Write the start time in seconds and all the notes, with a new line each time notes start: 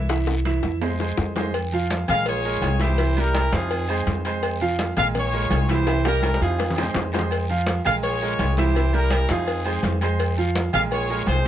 Already playing: C2
0.09 E3 E4 E5, high bongo, high timbale, long guiro
0.27 high bongo, high conga
0.45 E3 E4 E5, high conga, high timbale, short guiro
0.63 F2, low bongo, short guiro
0.82 G#3 G#4 C5, high conga, high timbale, long guiro
1.00 G#3 G#4 C5, low bongo, high conga
1.17 F2, low bongo, high conga, short guiro
1.36 G#3 G#4 C5, low bongo, high conga, low timbale, short guiro
1.54 cowbell, high conga, low agogo, long guiro
1.73 F3 F4 F5, high conga
1.90 cowbell, high conga, low timbale, low agogo, short guiro
2.08 A#1 G#3 G#4 A#4 F5, cowbell, high conga, low conga, low agogo, short guiro
2.26 F4 G#4 C#5, cowbell, high conga, low agogo, long guiro
2.45 G#3 G#4 A#4, high conga
2.62 C2, cowbell, high conga, low timbale, low agogo, short guiro
2.80 E3 E4 G4 C5 E5, cowbell, high conga, short guiro
2.98 E3 E4 E5, cowbell, high conga, low agogo, long guiro
3.16 G3 E4 G4 A#4, high conga, low agogo
3.35 cowbell, high conga, low timbale, low agogo, short guiro
3.52 F2 F3 C4 D#4 F4 G#4 F5, cowbell, high conga, short guiro
3.70 cowbell, high conga, low agogo, long guiro
3.88 G#3 G#4 C5, high conga, low agogo
4.07 F2, cowbell, high conga, low timbale, short guiro
4.25 G#3 G#4 C5, cowbell, high conga, low agogo, short guiro
4.43 cowbell, high conga, low agogo, long guiro
4.61 F3 F4 F5, high conga
4.79 cowbell, high conga, low timbale, low agogo, short guiro
4.97 A#1 G#3 G#4 A#4 F5, cowbell, high conga, low conga, low agogo, short guiro
5.15 F4 G#4 C#5, cowbell, high conga, low conga, low agogo, long guiro
5.33 G#3 G#4 A#4, high conga
5.51 C2, cowbell, high conga, low timbale, low agogo, short guiro
5.69 E3 E4 G4 C5 E5, cowbell, high conga, short guiro
5.87 E3 E4 E5, cowbell, high bongo, high conga, low agogo, long guiro
6.04 G3 E4 G4 A#4, high bongo, high conga, low agogo
6.23 cowbell, low bongo, high conga, low timbale, low agogo, short guiro
6.34 high conga
6.41 F2 F3 C4 D#4 F4 G#4 F5, cowbell, short guiro
6.58 cowbell, low bongo, low agogo, long guiro
6.70 low conga
6.77 G#3 G#4 C5, low bongo, low agogo
6.83 low conga
6.94 F2, cowbell, low bongo, low conga, low timbale, short guiro
7.12 G#3 G#4 C5, cowbell, low bongo, low agogo, short guiro
7.19 low conga
7.31 cowbell, high conga, low agogo, long guiro
7.49 F3 F4 F5, high conga
7.67 cowbell, high conga, low timbale, low agogo, short guiro
7.85 A#1 G#3 G#4 A#4 F5, cowbell, high conga, low conga, low agogo, short guiro
8.03 F4 G#4 C#5, cowbell, high conga, low agogo, long guiro
8.22 G#3 G#4 A#4, high conga
8.39 C2, cowbell, high conga, low timbale, low agogo, short guiro
8.57 E3 E4 G4 C5 E5, cowbell, high conga, short guiro
8.75 E3 E4 E5, cowbell, high conga, low agogo, long guiro
8.93 G3 E4 G4 A#4, high conga, low agogo
9.10 cowbell, high conga, low timbale, low agogo, short guiro
9.29 F2 F3 C4 D#4 F4 G#4 F5, cowbell, high conga, short guiro
9.47 cowbell, high conga, low agogo, long guiro
9.65 G#3 G#4 C5, high conga, low agogo
9.83 F2, cowbell, high conga, low timbale, short guiro
10.01 G#3 G#4 C5, cowbell, high conga, low agogo, short guiro
10.19 cowbell, high conga, low agogo, long guiro
10.37 F3 F4 F5, high conga
10.56 cowbell, high conga, low timbale, low agogo, short guiro
10.73 A#1 G#3 G#4 A#4 F5, cowbell, high conga, low conga, low agogo, short guiro
10.91 F4 G#4 C#5, cowbell, high conga, low agogo, long guiro
11.09 G#3 G#4 A#4, high conga
11.27 C2 F4 G#4 C5, cowbell, high conga, low timbale, low agogo, short guiro